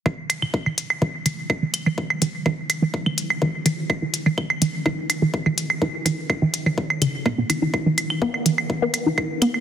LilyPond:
<<
  \new Staff \with { instrumentName = "Synth arpeggio sound" } { \clef bass \time 4/4 \key c \major \tempo 4 = 125 e16 r8 e16 r16 e16 r8 e16 r16 e16 r8 e16 r16 e16 | r8 e16 r16 e16 r8 e16 r16 e16 r8 e16 r16 e16 r16 | r16 e16 r16 e16 r8 e16 r16 e16 r8 e16 r16 e16 r8 | e16 r16 e16 r8 e16 r16 e16 r8 d16 r16 b,16 b,16 e16 e16 |
r16 e16 r8 b16 r16 e16 r8 b16 r16 e16 r8 b16 r16 | }
  \new DrumStaff \with { instrumentName = "Drums" } \drummode { \time 4/4 <cl bd>8 <cl hh>16 cl16 bd16 cl16 hh16 cl16 bd8 <cl hh>8 <cl bd>8 <cl hh>16 cl16 | bd16 cl16 <hh bd>8 <cl bd>8 <cl hh>8 bd16 cl16 hh16 cl16 bd8 <cl hh>8 | <cl bd>8 hh16 cl16 <cl bd>16 cl16 hh8 <cl bd>8 <cl hh>8 bd16 cl16 hh16 cl16 | bd8 <cl hh bd>8 <cl bd>8 hh16 cl16 bd16 cl16 <cl hh>8 <cl bd>8 <cl hh>8 |
<cl bd>8 <cl hh>16 cl16 bd16 cl16 hh16 cl16 bd8 <cl hh>8 <cl bd>8 <cl hh>16 cl16 | }
>>